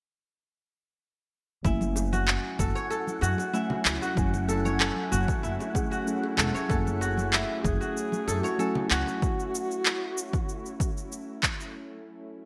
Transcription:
1.63 F#1 F#3 A3 C#4 E4 F#4 F#5, kick, cabasa
1.67 G#5
1.75 E4
1.81 high conga, cabasa
1.88 C#4
1.96 high bongo, cabasa
2.05 A3
2.13 F#4, high conga, cabasa
2.28 clap, cabasa
2.59 F#1 A4, kick, cabasa
2.75 C#5, cabasa
2.90 A4, cabasa
3.07 high conga, cabasa
3.21 F#2 F#4, high bongo, cabasa
3.38 high bongo, cabasa
3.53 F#3 A3 C#4 E4 G#5, cabasa
3.70 low conga
3.85 C#2, clap, cabasa
4.02 F#4, high bongo, cabasa
4.15 F#1 F#3 A3 C#4 E4 G#5, kick, cabasa
4.34 high conga, cabasa
4.49 A4, high bongo, cabasa
4.65 C#5, high conga, cabasa
4.80 A4, clap, cabasa
4.96 high conga
5.12 F#1 F#4, cabasa
5.28 kick, cabasa
5.43 F#1 E4, cabasa
5.60 high bongo, cabasa
5.74 F#3 A3 C#4 E4 G#4, kick, high bongo, high conga, cabasa
5.91 F#4, cabasa
6.05 F#3 A3 C#4 E4 G#4, cabasa
6.23 high bongo
6.37 E1 A4, clap, low conga, cabasa
6.55 C#5, cabasa
6.68 F#1 F#3 A3 C#4 E4 A4 G#5, kick, cabasa
6.87 high conga, cabasa
7.01 F#4, high bongo, cabasa
7.18 high conga, cabasa
7.32 E4, clap, cabasa
7.64 F#1 G#4, kick, cabasa
7.81 F#4, cabasa
7.97 cabasa
8.12 high conga, cabasa
8.28 F#2 A4, high bongo, cabasa
8.43 F#4 C#5, high bongo, cabasa
8.58 F#3 A3 C#4 E4 A4 G#5, cabasa
8.75 low conga
8.89 C#2 F#4, clap, cabasa
9.07 high bongo, cabasa
9.22 kick, cabasa
9.40 cabasa
9.55 cabasa
9.71 cabasa
9.86 clap, cabasa
10.18 cabasa
10.33 kick, cabasa
10.49 cabasa
10.66 cabasa
10.80 kick, cabasa
10.97 cabasa
11.12 cabasa
11.43 kick, clap, cabasa
11.60 cabasa

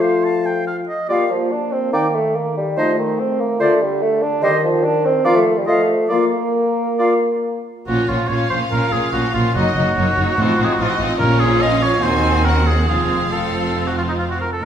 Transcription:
Already playing: F3 A3 F4 F5
0.01 C5
0.24 A5
0.46 G5
0.67 F5
0.88 D#5
1.09 G3 A#3 F4 D5 F5
1.31 F3
1.52 D4
1.72 C4
1.92 D#3 A#3 D#4 D5 G5
2.15 A3
2.35 A#3
2.57 G3
2.76 F3 A3 D#4 C5 D#5
2.98 D#3
3.19 C4
3.40 A#3
3.59 D3 A3 F4 C5 D5
3.82 G3
4.02 A3
4.22 D4
4.42 D#3 G3 G4 C5 D#5
4.64 F3
4.84 D4
5.05 C4
5.24 F3 A#3 F4 D5 F5
5.36 A3
5.57 G3
5.66 F3 A3 F4 D#5 F5
6.09 A#3 F4 D5 F5
6.99 F4 D5 F5
7.87 A#1 A#2 F3 A#3 C#4 F4 F#4 C#5
8.09 A#1 A#2 F3 A#3 C#4 F4
8.28 A#1 A#2 F3 A#3 C#5 F5
8.32 C#4 F4
8.50 A#1 A#2 F3 A#3 C#4 F4 C5
8.71 A#1 A#2 F3 A#3 C#4 F4 A#4
8.92 A#1 A#2 F3 A#3 C#4 F4 G#4
9.12 A#1 A#2 F3 A#3 C#4 F4 F#4
9.34 A#1 A#2 F3 A#3 C#4 F4
9.54 F#1 F#2 F#3 A#3 D#4 F#4 D#5
9.75 F#1 F#2 F#3 A#3 D#4
9.97 F#1 F#2 F#3 A#3 D#4 C#5
10.17 F#1 F#2 F#3 A#3 D#4
10.38 A1 A2 F3 C4 D#4 F4 C5
10.59 A1 A2 F3 C4 D#4 F4
10.64 G#4
10.73 F#4
10.78 A1 A2 F3 C4 D#4 F4 D#5
10.90 F#4
10.99 A1 A2 F3 C4 D#4 F4
11.19 A#1 A#2 F3 C#4 F4 A#4 C#5
11.40 G#4
11.61 D#5 F5
11.82 C#5
12.03 D#2 D#3 C4 D#4 F#4 C5 G#5
12.45 C#4 A#4 F#5
12.66 G#4
12.88 F1 F2 F3 C4 F4 G#4 F5
13.32 F3 C4 F4 A4
13.87 F#4
13.97 F4
14.08 D#4
14.19 F4
14.30 F#4
14.41 A#4
14.52 A4

